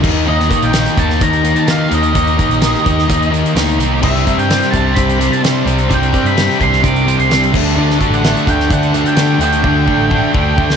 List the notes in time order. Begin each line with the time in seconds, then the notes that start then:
Already playing: G4
0.03 D#2 D#3 A#3 D#4 A#4, kick, crash
0.25 D#2 D#3 A#3 D#4 D#5
0.40 snare
0.49 D#3 A#3 D#4, kick, closed hi-hat
0.62 A#1 G5, closed hi-hat
0.73 D#3 A#3 D#4, snare, closed hi-hat
0.86 snare, closed hi-hat
0.97 D#2 D#3 A#3 D#4 A5, kick, closed hi-hat
1.10 snare
1.20 D#2 D#3 A#3 D#4 A#5, kick, closed hi-hat
1.33 closed hi-hat
1.43 D#3 A#3 D#4, closed hi-hat
1.55 D#3 A5, closed hi-hat
1.67 D#3 A#3 D#4 F5, snare, closed hi-hat
1.89 D#2 D#3 A#3 D#4, closed hi-hat
1.94 D#5
2.03 closed hi-hat
2.13 D#2 D#3 A#3 D#4, kick, closed hi-hat
2.27 closed hi-hat
2.37 D#3 A#3 D#4, kick, closed hi-hat
2.50 A#1, closed hi-hat
2.61 D#3 A#3 D#4, snare, closed hi-hat
2.75 snare
2.84 D#2 D#3 A#3 D#4, kick, closed hi-hat
2.99 snare
3.08 D#2 D#3 A#3 D#4, kick, closed hi-hat
3.22 closed hi-hat
3.31 D#3 A#3 D#4, closed hi-hat
3.44 D#3, closed hi-hat
3.54 D2 D#3 A#3 D#4, snare, closed hi-hat
3.69 closed hi-hat
3.79 C2 D#3 A#3 D#4, closed hi-hat
4.02 C2 C3 G3 C4 D4 C5 E5, kick, crash
4.16 snare
4.25 C3 G3 C4, kick, closed hi-hat
4.37 G2 G5, closed hi-hat
4.50 C3 G3 C4, snare, closed hi-hat
4.62 snare, closed hi-hat
4.71 C2 C3 G3 C4 A5, kick, closed hi-hat
4.95 C2 C3 G3 C4 B5, kick, closed hi-hat
5.09 closed hi-hat
5.19 C3 G3 C4, closed hi-hat
5.30 C3 A5, closed hi-hat
5.42 C3 G3 C4, snare, closed hi-hat
5.65 C2 C3 G3 C4, closed hi-hat
5.79 closed hi-hat
5.89 C2 C3 G3 C4, kick, closed hi-hat
5.94 G5
6.03 closed hi-hat
6.12 C3 G3 C4, kick, closed hi-hat
6.25 G2 B5, closed hi-hat
6.35 C3 G3 C4, snare, closed hi-hat
6.50 snare
6.59 C2 C3 G3 C4 C6, kick, closed hi-hat
6.63 C3
6.73 snare
6.83 C2 C3 G3 C4 D6, kick, closed hi-hat
6.96 closed hi-hat
7.07 C3 G3 C4, closed hi-hat
7.18 C2 C6, closed hi-hat
7.29 C3 G3 C4, snare, closed hi-hat
7.43 closed hi-hat
7.53 D2 D3 A3 D4 A4, kick, crash
7.76 D2 D3 A3 D4 D5
7.91 snare
7.99 D3 A3 D4, kick, closed hi-hat
8.10 A1 F#5, closed hi-hat
8.23 D3 A3 D4, snare, closed hi-hat
8.37 closed hi-hat
8.47 D2 D3 A3 D4 G5, kick, closed hi-hat
8.60 snare
8.70 D2 D3 A3 D4 F#5, kick, closed hi-hat
8.83 closed hi-hat
8.94 D3 A3 D4, closed hi-hat
9.04 D3 G5, closed hi-hat
9.17 D3 A3 D4, snare, closed hi-hat
9.39 D2 D3 A3 D4, closed hi-hat
9.45 G5
9.52 closed hi-hat
9.64 D2 D3 A3 D4, kick
9.86 D3 A3 D4, kick
9.98 A1
10.10 D3 A3 D4, kick
10.34 D2 D3 A3 D4, kick
10.58 D2 D3 A3 D4, kick
10.70 snare